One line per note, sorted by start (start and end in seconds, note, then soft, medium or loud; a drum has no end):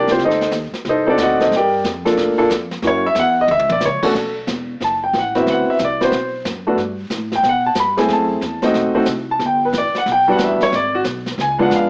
0.00 0.18 C2 medium
0.00 0.10 G4 medium
0.00 0.10 D5 medium
0.07 0.21 C5 medium
0.07 snare soft
0.12 0.21 C4 medium
0.12 0.21 F4 medium
0.12 0.21 G4 medium
0.19 0.51 D2 medium
0.19 brush sweep soft
0.19 kick soft
0.19 snare soft
0.24 0.53 D#4 medium
0.24 0.54 A4 medium
0.24 0.53 C5 medium
0.24 0.53 D#5 medium
0.30 snare soft
0.41 snare soft
0.51 0.71 D#2 medium
0.51 kick soft
0.51 snare medium
0.51 hi-hat pedal soft
0.72 muted upright bass stroke soft
0.72 snare soft
0.85 1.17 C2 medium
0.85 brush sweep soft
0.85 kick soft
0.85 snare soft
0.89 1.05 D#4 medium
0.89 1.06 A4 medium
0.89 1.08 C5 medium
0.89 1.08 D#5 medium
1.07 1.49 C4 medium
1.07 1.20 D4 medium
1.07 1.39 D#4 medium
1.07 1.21 F#4 medium
1.07 1.39 A4 medium
1.07 1.20 D5 medium
1.18 1.50 D2 medium
1.18 kick soft
1.18 snare medium
1.18 hi-hat pedal medium
1.22 1.41 F#4 medium
1.22 1.41 D5 medium
1.22 1.40 D#5 medium
1.22 1.41 F#5 medium
1.40 1.52 D#4 medium
1.40 1.52 A4 medium
1.40 1.52 C5 medium
1.40 1.52 D#5 medium
1.40 snare soft
1.51 1.83 G2 medium
1.51 brush sweep soft
1.51 kick soft
1.51 snare soft
1.56 1.85 G4 medium
1.56 1.85 A#4 medium
1.56 1.85 D5 medium
1.56 1.85 G5 medium
1.84 2.16 F2 medium
1.84 kick soft
1.84 snare medium
1.84 hi-hat pedal medium
2.05 2.36 A#3 medium
2.05 2.36 D4 medium
2.05 2.36 F4 medium
2.05 2.36 A4 medium
2.05 snare soft
2.17 2.37 A2 medium
2.17 brush sweep medium
2.17 kick soft
2.17 snare soft
2.38 2.49 A#3 medium
2.38 2.49 D4 medium
2.38 2.49 F4 medium
2.38 2.49 A4 medium
2.38 muted upright bass stroke soft
2.50 2.82 F2 medium
2.50 kick soft
2.50 snare medium
2.50 hi-hat pedal medium
2.71 snare soft
2.82 3.14 F#2 medium
2.82 3.02 A#3 medium
2.82 3.02 C#4 medium
2.82 3.02 E4 soft
2.82 3.02 F#4 medium
2.82 brush sweep soft
2.82 kick soft
2.82 snare soft
2.87 3.06 C#5 medium
3.06 3.17 E5 loud
3.15 3.47 E2 medium
3.15 kick soft
3.15 snare medium
3.15 hi-hat pedal medium
3.20 3.38 F#5 loud
3.41 3.51 D#5 medium
3.48 3.59 D2 medium
3.48 3.71 E5 loud
3.48 high tom soft
3.59 3.69 C#2 medium
3.59 high tom medium
3.69 3.80 A#1 medium
3.69 3.83 D5 medium
3.69 high tom medium
3.80 4.01 C#2 medium
3.80 snare medium
3.80 hi-hat pedal medium
3.85 4.04 C#5 medium
4.02 4.13 B2 medium
4.02 4.13 A3 medium
4.02 4.13 C#4 medium
4.02 4.14 D4 medium
4.02 4.14 F#4 medium
4.02 4.35 A4 medium
4.02 kick medium
4.02 crash medium
4.14 4.46 B1 medium
4.14 brush sweep soft
4.14 kick soft
4.14 snare soft
4.47 4.79 E1 medium
4.47 kick soft
4.47 snare medium
4.47 hi-hat pedal medium
4.80 5.12 F#1 medium
4.80 5.03 A5 medium
4.80 brush sweep soft
4.80 kick soft
4.80 snare soft
5.04 5.14 G5 medium
5.13 5.45 A1 medium
5.13 kick soft
5.13 snare medium
5.13 hi-hat pedal medium
5.18 5.37 F#5 medium
5.35 5.77 B3 medium
5.35 5.77 C4 medium
5.35 5.77 E4 medium
5.35 5.77 F#4 medium
5.35 5.47 E5 medium
5.35 snare soft
5.46 5.66 D2 medium
5.46 5.69 F#5 medium
5.46 brush sweep soft
5.46 kick soft
5.46 snare soft
5.67 5.80 E5 medium
5.67 muted upright bass stroke soft
5.79 6.11 C2 medium
5.79 kick soft
5.79 snare medium
5.79 hi-hat pedal soft
5.84 6.02 D5 medium
6.00 6.11 B3 medium
6.00 6.11 C4 medium
6.00 6.11 E4 medium
6.00 6.11 F#4 medium
6.00 6.43 C5 medium
6.00 snare soft
6.12 6.44 B1 medium
6.12 brush sweep soft
6.12 kick soft
6.12 snare soft
6.45 6.77 F#2 medium
6.45 kick soft
6.45 snare medium
6.45 hi-hat pedal medium
6.67 6.77 A3 medium
6.67 6.77 B3 medium
6.67 6.77 D4 medium
6.67 6.77 F#4 medium
6.78 7.10 G2 medium
6.78 brush sweep soft
6.78 kick soft
6.78 snare soft
7.10 7.42 A2 medium
7.10 kick soft
7.10 snare medium
7.10 hi-hat pedal soft
7.32 7.45 G5 medium
7.32 snare soft
7.43 7.74 B2 medium
7.43 brush sweep soft
7.43 kick soft
7.43 snare soft
7.49 7.67 F#5 medium
7.66 7.77 A5 medium
7.75 8.07 G2 medium
7.75 kick soft
7.75 snare medium
7.75 hi-hat pedal medium
7.79 7.98 B5 medium
7.97 8.39 A3 medium
7.97 8.40 C4 medium
7.97 8.40 E4 medium
7.97 8.40 G#4 medium
7.97 8.09 G#5 medium
7.97 snare soft
8.08 8.41 F#2 medium
8.08 brush sweep soft
8.08 kick soft
8.08 snare soft
8.13 8.61 A5 medium
8.41 8.73 E2 medium
8.41 kick soft
8.41 snare medium
8.41 hi-hat pedal soft
8.62 8.93 A3 medium
8.62 8.93 C4 medium
8.62 8.94 D#4 medium
8.62 8.94 F#4 medium
8.62 9.06 D#5 medium
8.62 snare soft
8.74 8.94 B1 medium
8.74 brush sweep soft
8.74 kick soft
8.74 snare soft
8.94 9.06 A3 medium
8.94 9.06 C4 medium
8.94 9.06 D#4 medium
8.94 9.06 F#4 medium
8.94 muted upright bass stroke soft
9.06 9.39 C2 medium
9.06 kick soft
9.06 snare medium
9.06 hi-hat pedal medium
9.31 9.41 A5 medium
9.40 9.72 G1 medium
9.40 brush sweep soft
9.40 kick soft
9.40 snare soft
9.46 9.64 G5 medium
9.65 9.75 B4 medium
9.73 9.92 A1 medium
9.73 kick soft
9.73 snare medium
9.73 hi-hat pedal soft
9.78 9.96 D5 medium
9.95 10.07 F#5 medium
9.95 snare soft
10.06 10.38 B1 medium
10.06 brush sweep soft
10.06 kick soft
10.06 snare soft
10.12 10.29 G5 loud
10.27 10.69 G3 medium
10.27 10.69 B3 medium
10.27 10.70 D4 medium
10.27 10.70 F#4 medium
10.31 10.41 F#5 medium
10.38 10.58 A1 medium
10.38 kick soft
10.38 snare medium
10.38 hi-hat pedal medium
10.44 10.62 E5 medium
10.60 10.73 C#5 medium
10.60 muted upright bass stroke soft
10.60 snare soft
10.72 11.03 G#1 medium
10.72 10.94 D5 medium
10.72 brush sweep soft
10.72 kick soft
10.72 snare soft
10.95 11.01 F#4 medium
11.04 11.36 B1 medium
11.04 kick soft
11.04 snare medium
11.04 hi-hat pedal medium
11.26 snare soft
11.38 11.69 C#2 medium
11.38 11.60 G#5 medium
11.38 brush sweep soft
11.38 kick soft
11.38 snare soft
11.59 11.90 G#3 medium
11.59 11.90 B3 medium
11.59 11.90 D4 medium
11.59 11.90 F4 medium
11.59 11.72 F#5 medium
11.70 11.90 F2 medium
11.70 kick soft
11.70 snare medium
11.70 hi-hat pedal medium
11.76 11.90 F5 medium